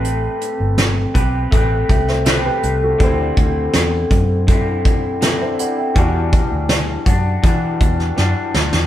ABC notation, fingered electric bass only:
X:1
M:4/4
L:1/16
Q:1/4=81
K:Em
V:1 name="Fingered electric bass" clef=bass
A,,,2 z G,,,3 B,,,2 A,,,2 C,,4 C,,2 | D,,2 D,,2 E,,2 F,,8 z2 | E,,3 D,,3 F,,2 E,2 E,,2 F,, z D,, E,, |]